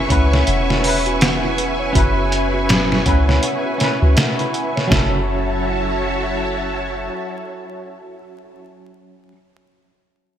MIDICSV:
0, 0, Header, 1, 6, 480
1, 0, Start_track
1, 0, Key_signature, 3, "minor"
1, 0, Tempo, 740741
1, 1262, Time_signature, 4, 2, 24, 8
1, 6726, End_track
2, 0, Start_track
2, 0, Title_t, "String machine"
2, 0, Program_c, 0, 50
2, 0, Note_on_c, 0, 71, 82
2, 0, Note_on_c, 0, 76, 78
2, 0, Note_on_c, 0, 80, 81
2, 0, Note_on_c, 0, 85, 96
2, 3155, Note_off_c, 0, 85, 0
2, 3156, Note_off_c, 0, 76, 0
2, 3158, Note_off_c, 0, 71, 0
2, 3158, Note_off_c, 0, 80, 0
2, 3183, Note_on_c, 0, 81, 84
2, 3184, Note_on_c, 0, 76, 76
2, 3185, Note_on_c, 0, 66, 76
2, 3187, Note_on_c, 0, 73, 75
2, 5595, Note_off_c, 0, 81, 0
2, 5596, Note_off_c, 0, 66, 0
2, 5596, Note_off_c, 0, 76, 0
2, 5597, Note_off_c, 0, 73, 0
2, 6726, End_track
3, 0, Start_track
3, 0, Title_t, "Celesta"
3, 0, Program_c, 1, 8
3, 0, Control_c, 1, 64, 127
3, 0, Note_on_c, 1, 61, 78
3, 0, Note_on_c, 1, 64, 68
3, 0, Note_on_c, 1, 66, 95
3, 0, Note_on_c, 1, 71, 68
3, 73, Note_on_c, 1, 78, 66
3, 196, Note_off_c, 1, 78, 0
3, 210, Note_on_c, 1, 73, 93
3, 295, Note_off_c, 1, 73, 0
3, 307, Note_on_c, 1, 78, 78
3, 385, Note_off_c, 1, 78, 0
3, 449, Note_off_c, 1, 66, 0
3, 449, Note_on_c, 1, 66, 70
3, 535, Note_off_c, 1, 66, 0
3, 545, Note_off_c, 1, 71, 0
3, 545, Note_on_c, 1, 71, 70
3, 672, Note_off_c, 1, 71, 0
3, 688, Note_on_c, 1, 66, 90
3, 774, Note_off_c, 1, 66, 0
3, 785, Note_on_c, 1, 78, 77
3, 919, Note_off_c, 1, 78, 0
3, 928, Note_off_c, 1, 64, 0
3, 928, Note_on_c, 1, 64, 66
3, 1019, Note_off_c, 1, 64, 0
3, 1023, Note_on_c, 1, 78, 64
3, 1151, Note_off_c, 1, 78, 0
3, 1163, Note_on_c, 1, 73, 85
3, 1251, Note_off_c, 1, 73, 0
3, 1263, Note_on_c, 1, 66, 93
3, 1396, Note_off_c, 1, 66, 0
3, 1404, Note_on_c, 1, 66, 88
3, 1492, Note_off_c, 1, 66, 0
3, 1504, Note_on_c, 1, 71, 67
3, 1631, Note_off_c, 1, 71, 0
3, 1643, Note_on_c, 1, 66, 93
3, 1731, Note_off_c, 1, 66, 0
3, 1741, Note_off_c, 1, 61, 0
3, 1741, Note_on_c, 1, 61, 73
3, 1870, Note_off_c, 1, 61, 0
3, 1883, Note_on_c, 1, 64, 68
3, 1976, Note_off_c, 1, 64, 0
3, 1981, Note_on_c, 1, 78, 67
3, 2110, Note_off_c, 1, 78, 0
3, 2125, Note_on_c, 1, 73, 87
3, 2213, Note_off_c, 1, 73, 0
3, 2222, Note_on_c, 1, 78, 71
3, 2303, Note_off_c, 1, 78, 0
3, 2363, Note_on_c, 1, 66, 60
3, 2452, Note_off_c, 1, 66, 0
3, 2461, Note_on_c, 1, 71, 64
3, 2590, Note_off_c, 1, 71, 0
3, 2605, Note_on_c, 1, 66, 87
3, 2692, Note_off_c, 1, 66, 0
3, 2702, Note_on_c, 1, 78, 73
3, 2837, Note_off_c, 1, 78, 0
3, 2843, Note_on_c, 1, 64, 65
3, 2936, Note_off_c, 1, 64, 0
3, 2941, Note_on_c, 1, 78, 64
3, 3070, Note_off_c, 1, 78, 0
3, 3084, Note_on_c, 1, 73, 87
3, 3172, Note_off_c, 1, 73, 0
3, 3178, Note_on_c, 1, 66, 81
3, 3191, Control_c, 1, 64, 0
3, 3318, Control_c, 1, 64, 127
3, 3403, Note_off_c, 1, 66, 0
3, 6726, End_track
4, 0, Start_track
4, 0, Title_t, "Clean electric guitar"
4, 0, Program_c, 2, 27
4, 56, Note_on_c, 2, 61, 73
4, 66, Note_on_c, 2, 64, 63
4, 76, Note_on_c, 2, 71, 74
4, 515, Note_off_c, 2, 61, 0
4, 521, Note_off_c, 2, 64, 0
4, 525, Note_off_c, 2, 71, 0
4, 527, Note_on_c, 2, 61, 68
4, 546, Note_on_c, 2, 64, 67
4, 566, Note_on_c, 2, 71, 81
4, 1231, Note_off_c, 2, 61, 0
4, 1241, Note_off_c, 2, 64, 0
4, 1249, Note_on_c, 2, 61, 74
4, 1251, Note_off_c, 2, 71, 0
4, 1267, Note_on_c, 2, 64, 69
4, 1285, Note_on_c, 2, 71, 83
4, 1952, Note_off_c, 2, 61, 0
4, 1961, Note_off_c, 2, 64, 0
4, 1970, Note_off_c, 2, 71, 0
4, 1982, Note_on_c, 2, 61, 66
4, 1991, Note_on_c, 2, 64, 57
4, 2002, Note_on_c, 2, 71, 72
4, 2439, Note_off_c, 2, 61, 0
4, 2443, Note_off_c, 2, 64, 0
4, 2448, Note_off_c, 2, 71, 0
4, 2450, Note_on_c, 2, 61, 68
4, 2468, Note_on_c, 2, 64, 65
4, 2486, Note_on_c, 2, 71, 77
4, 3153, Note_off_c, 2, 61, 0
4, 3158, Note_on_c, 2, 54, 73
4, 3162, Note_off_c, 2, 64, 0
4, 3171, Note_off_c, 2, 71, 0
4, 3175, Note_on_c, 2, 61, 70
4, 3194, Note_on_c, 2, 64, 67
4, 3212, Note_on_c, 2, 69, 84
4, 6036, Note_off_c, 2, 54, 0
4, 6045, Note_off_c, 2, 61, 0
4, 6054, Note_off_c, 2, 64, 0
4, 6063, Note_off_c, 2, 69, 0
4, 6726, End_track
5, 0, Start_track
5, 0, Title_t, "808-style bass"
5, 0, Program_c, 3, 38
5, 67, Note_on_c, 3, 37, 88
5, 281, Note_off_c, 3, 37, 0
5, 310, Note_on_c, 3, 28, 92
5, 1247, Note_off_c, 3, 28, 0
5, 1266, Note_on_c, 3, 30, 89
5, 1965, Note_off_c, 3, 30, 0
5, 1985, Note_on_c, 3, 37, 82
5, 2200, Note_off_c, 3, 37, 0
5, 2607, Note_on_c, 3, 37, 84
5, 2692, Note_off_c, 3, 37, 0
5, 3182, Note_on_c, 3, 30, 92
5, 4596, Note_off_c, 3, 30, 0
5, 6726, End_track
6, 0, Start_track
6, 0, Title_t, "Drums"
6, 66, Note_on_c, 9, 36, 87
6, 67, Note_on_c, 9, 42, 66
6, 131, Note_off_c, 9, 36, 0
6, 132, Note_off_c, 9, 42, 0
6, 217, Note_on_c, 9, 38, 43
6, 282, Note_off_c, 9, 38, 0
6, 304, Note_on_c, 9, 42, 78
6, 369, Note_off_c, 9, 42, 0
6, 456, Note_on_c, 9, 38, 44
6, 520, Note_off_c, 9, 38, 0
6, 544, Note_on_c, 9, 46, 73
6, 609, Note_off_c, 9, 46, 0
6, 687, Note_on_c, 9, 42, 38
6, 752, Note_off_c, 9, 42, 0
6, 785, Note_on_c, 9, 42, 72
6, 791, Note_on_c, 9, 38, 98
6, 850, Note_off_c, 9, 42, 0
6, 856, Note_off_c, 9, 38, 0
6, 1025, Note_on_c, 9, 42, 61
6, 1090, Note_off_c, 9, 42, 0
6, 1266, Note_on_c, 9, 36, 99
6, 1266, Note_on_c, 9, 42, 76
6, 1330, Note_off_c, 9, 36, 0
6, 1331, Note_off_c, 9, 42, 0
6, 1504, Note_on_c, 9, 42, 60
6, 1569, Note_off_c, 9, 42, 0
6, 1744, Note_on_c, 9, 42, 76
6, 1750, Note_on_c, 9, 38, 101
6, 1809, Note_off_c, 9, 42, 0
6, 1815, Note_off_c, 9, 38, 0
6, 1892, Note_on_c, 9, 38, 43
6, 1957, Note_off_c, 9, 38, 0
6, 1982, Note_on_c, 9, 42, 63
6, 1984, Note_on_c, 9, 36, 89
6, 2046, Note_off_c, 9, 42, 0
6, 2049, Note_off_c, 9, 36, 0
6, 2132, Note_on_c, 9, 38, 36
6, 2197, Note_off_c, 9, 38, 0
6, 2221, Note_on_c, 9, 42, 73
6, 2286, Note_off_c, 9, 42, 0
6, 2463, Note_on_c, 9, 42, 62
6, 2469, Note_on_c, 9, 38, 50
6, 2528, Note_off_c, 9, 42, 0
6, 2534, Note_off_c, 9, 38, 0
6, 2700, Note_on_c, 9, 42, 69
6, 2706, Note_on_c, 9, 38, 99
6, 2765, Note_off_c, 9, 42, 0
6, 2771, Note_off_c, 9, 38, 0
6, 2846, Note_on_c, 9, 42, 37
6, 2910, Note_off_c, 9, 42, 0
6, 2942, Note_on_c, 9, 42, 57
6, 3007, Note_off_c, 9, 42, 0
6, 3093, Note_on_c, 9, 38, 44
6, 3158, Note_off_c, 9, 38, 0
6, 3182, Note_on_c, 9, 36, 89
6, 3186, Note_on_c, 9, 38, 94
6, 3247, Note_off_c, 9, 36, 0
6, 3251, Note_off_c, 9, 38, 0
6, 6726, End_track
0, 0, End_of_file